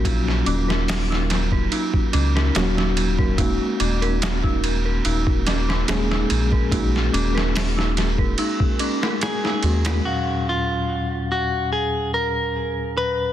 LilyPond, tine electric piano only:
\new Staff \with { instrumentName = "Tine electric piano" } { \time 4/4 \key ees \minor \tempo 4 = 72 <ges bes des' f'>2. <ges bes des' ges'>4 | <aes bes des' ges'>2. <aes bes des' aes'>4 | <aes bes des' ges'>2. r8 <aes bes des' ges'>8 | <ees, bes, ges des' f''>1 | }